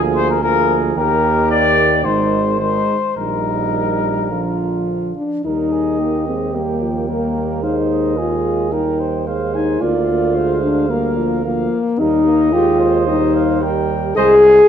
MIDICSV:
0, 0, Header, 1, 6, 480
1, 0, Start_track
1, 0, Key_signature, -3, "major"
1, 0, Tempo, 544465
1, 853, Time_signature, 4, 2, 24, 8
1, 2296, Tempo, 566572
1, 5176, Tempo, 543478
1, 12842, End_track
2, 0, Start_track
2, 0, Title_t, "Trumpet"
2, 0, Program_c, 0, 56
2, 139, Note_on_c, 0, 72, 86
2, 253, Note_off_c, 0, 72, 0
2, 264, Note_on_c, 0, 70, 72
2, 372, Note_off_c, 0, 70, 0
2, 378, Note_on_c, 0, 70, 94
2, 680, Note_off_c, 0, 70, 0
2, 855, Note_on_c, 0, 70, 89
2, 1301, Note_off_c, 0, 70, 0
2, 1329, Note_on_c, 0, 74, 100
2, 1805, Note_on_c, 0, 72, 73
2, 1818, Note_off_c, 0, 74, 0
2, 2280, Note_off_c, 0, 72, 0
2, 2286, Note_on_c, 0, 72, 76
2, 2756, Note_off_c, 0, 72, 0
2, 2776, Note_on_c, 0, 70, 68
2, 4198, Note_off_c, 0, 70, 0
2, 4710, Note_on_c, 0, 75, 44
2, 5660, Note_on_c, 0, 79, 42
2, 5673, Note_off_c, 0, 75, 0
2, 6608, Note_off_c, 0, 79, 0
2, 6614, Note_on_c, 0, 77, 45
2, 6722, Note_off_c, 0, 77, 0
2, 6856, Note_on_c, 0, 75, 43
2, 7576, Note_on_c, 0, 79, 44
2, 7589, Note_off_c, 0, 75, 0
2, 8063, Note_on_c, 0, 77, 52
2, 8077, Note_off_c, 0, 79, 0
2, 8301, Note_on_c, 0, 80, 56
2, 8315, Note_off_c, 0, 77, 0
2, 8535, Note_off_c, 0, 80, 0
2, 8541, Note_on_c, 0, 77, 56
2, 9953, Note_off_c, 0, 77, 0
2, 9985, Note_on_c, 0, 77, 55
2, 10291, Note_off_c, 0, 77, 0
2, 10464, Note_on_c, 0, 75, 57
2, 11384, Note_off_c, 0, 75, 0
2, 11414, Note_on_c, 0, 75, 64
2, 11658, Note_on_c, 0, 77, 70
2, 11671, Note_off_c, 0, 75, 0
2, 11898, Note_on_c, 0, 79, 69
2, 11912, Note_off_c, 0, 77, 0
2, 12374, Note_off_c, 0, 79, 0
2, 12379, Note_on_c, 0, 75, 72
2, 12546, Note_off_c, 0, 75, 0
2, 12842, End_track
3, 0, Start_track
3, 0, Title_t, "Flugelhorn"
3, 0, Program_c, 1, 56
3, 0, Note_on_c, 1, 68, 68
3, 365, Note_off_c, 1, 68, 0
3, 387, Note_on_c, 1, 68, 63
3, 862, Note_on_c, 1, 67, 65
3, 875, Note_off_c, 1, 68, 0
3, 1815, Note_on_c, 1, 63, 54
3, 1828, Note_off_c, 1, 67, 0
3, 2149, Note_off_c, 1, 63, 0
3, 2290, Note_on_c, 1, 63, 48
3, 2595, Note_off_c, 1, 63, 0
3, 2773, Note_on_c, 1, 63, 46
3, 3708, Note_off_c, 1, 63, 0
3, 3741, Note_on_c, 1, 65, 43
3, 4453, Note_off_c, 1, 65, 0
3, 4713, Note_on_c, 1, 70, 41
3, 4935, Note_on_c, 1, 68, 42
3, 4947, Note_off_c, 1, 70, 0
3, 5169, Note_on_c, 1, 67, 43
3, 5182, Note_off_c, 1, 68, 0
3, 6125, Note_off_c, 1, 67, 0
3, 6130, Note_on_c, 1, 70, 43
3, 6615, Note_on_c, 1, 72, 43
3, 6628, Note_off_c, 1, 70, 0
3, 7095, Note_on_c, 1, 68, 45
3, 7108, Note_off_c, 1, 72, 0
3, 7581, Note_on_c, 1, 70, 48
3, 7594, Note_off_c, 1, 68, 0
3, 7825, Note_on_c, 1, 72, 47
3, 7838, Note_off_c, 1, 70, 0
3, 8059, Note_off_c, 1, 72, 0
3, 8065, Note_on_c, 1, 72, 47
3, 8544, Note_on_c, 1, 74, 49
3, 8557, Note_off_c, 1, 72, 0
3, 9021, Note_on_c, 1, 72, 49
3, 9034, Note_off_c, 1, 74, 0
3, 9506, Note_on_c, 1, 70, 51
3, 9519, Note_off_c, 1, 72, 0
3, 10223, Note_off_c, 1, 70, 0
3, 10464, Note_on_c, 1, 70, 56
3, 10940, Note_on_c, 1, 67, 61
3, 10953, Note_off_c, 1, 70, 0
3, 11173, Note_off_c, 1, 67, 0
3, 11178, Note_on_c, 1, 72, 63
3, 11911, Note_on_c, 1, 70, 63
3, 11924, Note_off_c, 1, 72, 0
3, 12381, Note_off_c, 1, 70, 0
3, 12386, Note_on_c, 1, 72, 69
3, 12550, Note_off_c, 1, 72, 0
3, 12842, End_track
4, 0, Start_track
4, 0, Title_t, "French horn"
4, 0, Program_c, 2, 60
4, 0, Note_on_c, 2, 58, 56
4, 362, Note_off_c, 2, 58, 0
4, 370, Note_on_c, 2, 58, 61
4, 842, Note_off_c, 2, 58, 0
4, 854, Note_on_c, 2, 58, 64
4, 1794, Note_off_c, 2, 58, 0
4, 1817, Note_on_c, 2, 56, 52
4, 2289, Note_off_c, 2, 56, 0
4, 2295, Note_on_c, 2, 56, 49
4, 2597, Note_off_c, 2, 56, 0
4, 2775, Note_on_c, 2, 55, 45
4, 3738, Note_on_c, 2, 53, 42
4, 3751, Note_off_c, 2, 55, 0
4, 4458, Note_off_c, 2, 53, 0
4, 4463, Note_on_c, 2, 62, 53
4, 4688, Note_off_c, 2, 62, 0
4, 4705, Note_on_c, 2, 63, 68
4, 5401, Note_off_c, 2, 63, 0
4, 5418, Note_on_c, 2, 60, 54
4, 5656, Note_on_c, 2, 58, 47
4, 5670, Note_off_c, 2, 60, 0
4, 6126, Note_off_c, 2, 58, 0
4, 6132, Note_on_c, 2, 58, 55
4, 6604, Note_off_c, 2, 58, 0
4, 6611, Note_on_c, 2, 63, 67
4, 7084, Note_off_c, 2, 63, 0
4, 7099, Note_on_c, 2, 65, 67
4, 7568, Note_off_c, 2, 65, 0
4, 7573, Note_on_c, 2, 63, 59
4, 8051, Note_off_c, 2, 63, 0
4, 8304, Note_on_c, 2, 63, 67
4, 8538, Note_on_c, 2, 65, 81
4, 8552, Note_off_c, 2, 63, 0
4, 9254, Note_off_c, 2, 65, 0
4, 9259, Note_on_c, 2, 62, 73
4, 9489, Note_off_c, 2, 62, 0
4, 9495, Note_on_c, 2, 58, 70
4, 9970, Note_off_c, 2, 58, 0
4, 9986, Note_on_c, 2, 58, 73
4, 10464, Note_on_c, 2, 63, 92
4, 10477, Note_off_c, 2, 58, 0
4, 10939, Note_on_c, 2, 65, 90
4, 10952, Note_off_c, 2, 63, 0
4, 11416, Note_off_c, 2, 65, 0
4, 11421, Note_on_c, 2, 63, 81
4, 11891, Note_off_c, 2, 63, 0
4, 12379, Note_on_c, 2, 68, 112
4, 12842, Note_off_c, 2, 68, 0
4, 12842, End_track
5, 0, Start_track
5, 0, Title_t, "Trombone"
5, 0, Program_c, 3, 57
5, 0, Note_on_c, 3, 53, 61
5, 358, Note_off_c, 3, 53, 0
5, 364, Note_on_c, 3, 53, 62
5, 848, Note_on_c, 3, 51, 62
5, 862, Note_off_c, 3, 53, 0
5, 1804, Note_off_c, 3, 51, 0
5, 1809, Note_on_c, 3, 51, 55
5, 2284, Note_off_c, 3, 51, 0
5, 2302, Note_on_c, 3, 51, 49
5, 2600, Note_off_c, 3, 51, 0
5, 2775, Note_on_c, 3, 51, 49
5, 3738, Note_on_c, 3, 50, 44
5, 3750, Note_off_c, 3, 51, 0
5, 4465, Note_off_c, 3, 50, 0
5, 4704, Note_on_c, 3, 55, 41
5, 5169, Note_on_c, 3, 58, 43
5, 5182, Note_off_c, 3, 55, 0
5, 5405, Note_off_c, 3, 58, 0
5, 5410, Note_on_c, 3, 56, 45
5, 5649, Note_on_c, 3, 55, 44
5, 5663, Note_off_c, 3, 56, 0
5, 5893, Note_on_c, 3, 53, 43
5, 5907, Note_off_c, 3, 55, 0
5, 6136, Note_on_c, 3, 55, 44
5, 6149, Note_off_c, 3, 53, 0
5, 6365, Note_off_c, 3, 55, 0
5, 6370, Note_on_c, 3, 55, 44
5, 6610, Note_on_c, 3, 56, 44
5, 6623, Note_off_c, 3, 55, 0
5, 7085, Note_off_c, 3, 56, 0
5, 7090, Note_on_c, 3, 56, 44
5, 7575, Note_on_c, 3, 55, 45
5, 7589, Note_off_c, 3, 56, 0
5, 8065, Note_on_c, 3, 56, 46
5, 8078, Note_off_c, 3, 55, 0
5, 8541, Note_on_c, 3, 58, 54
5, 8555, Note_off_c, 3, 56, 0
5, 8773, Note_off_c, 3, 58, 0
5, 8778, Note_on_c, 3, 58, 53
5, 9012, Note_off_c, 3, 58, 0
5, 9017, Note_on_c, 3, 56, 49
5, 9500, Note_on_c, 3, 55, 56
5, 9514, Note_off_c, 3, 56, 0
5, 9736, Note_on_c, 3, 53, 56
5, 9749, Note_off_c, 3, 55, 0
5, 9980, Note_off_c, 3, 53, 0
5, 9985, Note_on_c, 3, 53, 51
5, 10291, Note_off_c, 3, 53, 0
5, 10463, Note_on_c, 3, 55, 61
5, 10685, Note_off_c, 3, 55, 0
5, 10700, Note_on_c, 3, 58, 64
5, 10934, Note_off_c, 3, 58, 0
5, 10943, Note_on_c, 3, 56, 61
5, 11423, Note_on_c, 3, 55, 60
5, 11436, Note_off_c, 3, 56, 0
5, 11896, Note_off_c, 3, 55, 0
5, 11901, Note_on_c, 3, 55, 63
5, 12370, Note_off_c, 3, 55, 0
5, 12381, Note_on_c, 3, 56, 70
5, 12547, Note_off_c, 3, 56, 0
5, 12842, End_track
6, 0, Start_track
6, 0, Title_t, "Tuba"
6, 0, Program_c, 4, 58
6, 0, Note_on_c, 4, 38, 63
6, 816, Note_off_c, 4, 38, 0
6, 850, Note_on_c, 4, 39, 67
6, 1810, Note_on_c, 4, 32, 57
6, 1823, Note_off_c, 4, 39, 0
6, 2527, Note_off_c, 4, 32, 0
6, 2770, Note_on_c, 4, 34, 50
6, 4433, Note_off_c, 4, 34, 0
6, 4704, Note_on_c, 4, 39, 46
6, 8506, Note_off_c, 4, 39, 0
6, 8542, Note_on_c, 4, 38, 53
6, 10186, Note_off_c, 4, 38, 0
6, 10467, Note_on_c, 4, 39, 64
6, 12345, Note_off_c, 4, 39, 0
6, 12377, Note_on_c, 4, 36, 76
6, 12776, Note_off_c, 4, 36, 0
6, 12842, End_track
0, 0, End_of_file